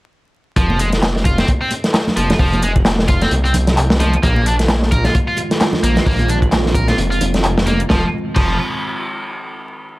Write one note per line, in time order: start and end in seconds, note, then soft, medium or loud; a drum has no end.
0.56 1.43 F1 loud
0.56 0.79 F3 loud
0.56 kick loud
0.56 closed hi-hat loud
0.56 closed hi-hat soft
0.70 high conga medium
0.79 0.88 G#3 medium
0.79 closed hi-hat medium
0.92 snare soft
0.92 closed hi-hat soft
1.02 snare loud
1.02 clap loud
1.02 closed hi-hat medium
1.02 closed hi-hat soft
1.02 high conga medium
1.16 snare soft
1.25 1.37 F4 medium
1.25 kick loud
1.25 closed hi-hat medium
1.38 1.48 C4 medium
1.38 snare medium
1.38 closed hi-hat soft
1.38 high conga medium
1.48 kick loud
1.48 closed hi-hat soft
1.48 closed hi-hat medium
1.61 1.71 C4 medium
1.71 closed hi-hat medium
1.71 muted conga medium
1.71 high conga medium
1.84 snare medium
1.84 closed hi-hat soft
1.94 snare loud
1.94 clap loud
1.94 closed hi-hat medium
1.94 closed hi-hat soft
2.07 snare soft
2.07 low conga medium
2.17 2.33 F1 medium
2.17 2.29 F3 medium
2.17 closed hi-hat medium
2.17 high conga medium
2.30 snare medium
2.30 closed hi-hat soft
2.30 low conga medium
2.39 3.26 F1 loud
2.39 2.62 F3 loud
2.39 kick loud
2.39 closed hi-hat soft
2.39 open hi-hat medium
2.53 closed hi-hat soft
2.53 high conga medium
2.62 2.71 G#3 medium
2.62 closed hi-hat medium
2.62 muted conga medium
2.76 kick loud
2.76 closed hi-hat soft
2.85 snare loud
2.85 clap loud
2.85 closed hi-hat soft
2.85 closed hi-hat medium
2.85 high conga medium
2.99 snare soft
3.08 3.20 F4 medium
3.08 kick loud
3.08 closed hi-hat medium
3.08 muted conga medium
3.22 3.31 C4 medium
3.22 snare soft
3.22 closed hi-hat soft
3.22 high conga medium
3.31 4.18 C2 loud
3.31 closed hi-hat medium
3.31 closed hi-hat soft
3.44 3.54 C4 medium
3.44 closed hi-hat soft
3.54 closed hi-hat medium
3.54 high conga medium
3.54 low conga loud
3.67 snare soft
3.67 closed hi-hat soft
3.67 low conga medium
3.77 clap loud
3.77 closed hi-hat soft
3.77 closed hi-hat medium
3.90 snare loud
4.00 4.13 F3 medium
4.00 closed hi-hat medium
4.00 high conga loud
4.00 low conga medium
4.13 closed hi-hat soft
4.23 5.10 A#1 loud
4.23 7.86 D#3 medium
4.23 7.86 F3 medium
4.23 7.86 G#3 medium
4.23 4.45 A#3 loud
4.23 6.05 A#3 medium
4.23 7.86 F4 medium
4.23 kick loud
4.23 closed hi-hat soft
4.23 closed hi-hat loud
4.36 high conga medium
4.46 4.54 D4 medium
4.46 closed hi-hat medium
4.59 snare soft
4.59 closed hi-hat soft
4.68 snare loud
4.68 clap loud
4.68 closed hi-hat medium
4.68 closed hi-hat soft
4.68 high conga medium
4.83 snare soft
4.92 5.04 A#4 medium
4.92 kick medium
4.92 closed hi-hat medium
5.05 5.14 F4 medium
5.05 snare medium
5.05 closed hi-hat soft
5.05 high conga loud
5.15 kick loud
5.15 closed hi-hat medium
5.15 closed hi-hat soft
5.28 5.37 F4 medium
5.37 closed hi-hat medium
5.37 muted conga medium
5.37 high conga medium
5.51 snare medium
5.51 closed hi-hat soft
5.60 snare loud
5.60 clap loud
5.60 closed hi-hat medium
5.60 closed hi-hat soft
5.73 snare soft
5.73 low conga medium
5.83 6.00 A#1 medium
5.83 5.96 A#3 medium
5.83 closed hi-hat medium
5.83 high conga loud
5.96 snare medium
5.96 closed hi-hat soft
5.96 low conga medium
6.06 6.93 A#1 loud
6.06 6.28 A#3 loud
6.06 7.88 C4 medium
6.06 kick loud
6.06 closed hi-hat soft
6.06 open hi-hat medium
6.19 closed hi-hat soft
6.19 high conga medium
6.28 6.38 D4 medium
6.28 closed hi-hat medium
6.28 muted conga medium
6.42 kick medium
6.42 closed hi-hat soft
6.52 snare loud
6.52 clap loud
6.52 closed hi-hat loud
6.52 closed hi-hat soft
6.52 high conga medium
6.66 snare soft
6.75 6.87 A#4 medium
6.75 kick loud
6.75 closed hi-hat medium
6.75 muted conga medium
6.88 6.97 F4 medium
6.88 snare soft
6.88 closed hi-hat soft
6.88 high conga loud
6.98 7.84 F1 loud
6.98 closed hi-hat soft
6.98 closed hi-hat medium
7.11 7.20 F4 medium
7.11 closed hi-hat soft
7.21 closed hi-hat medium
7.21 high conga medium
7.21 low conga loud
7.34 snare soft
7.34 closed hi-hat soft
7.34 low conga medium
7.43 clap loud
7.43 closed hi-hat medium
7.43 closed hi-hat soft
7.58 snare loud
7.67 7.79 A#3 medium
7.67 closed hi-hat medium
7.67 muted conga soft
7.67 high conga medium
7.67 low conga medium
7.80 closed hi-hat soft
7.89 8.04 F1 loud
7.89 8.11 D#3 medium
7.89 8.04 F3 medium
7.89 8.11 F3 medium
7.89 8.11 G#3 medium
7.89 8.11 C4 medium
7.89 8.11 F4 medium
7.89 kick loud
7.89 snare medium
8.35 8.57 F1 loud
8.35 8.57 F3 loud
8.35 kick loud
8.35 crash medium